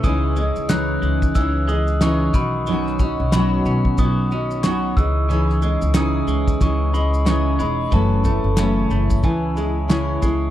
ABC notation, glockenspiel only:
X:1
M:4/4
L:1/8
Q:"Swing 16ths" 1/4=91
K:C#m
V:1 name="Glockenspiel"
d'2 f'2 e' d' c' b- | b2 b2 d'2 c' e'- | e'2 d'2 c' b c' b | a4 g2 c'2 |]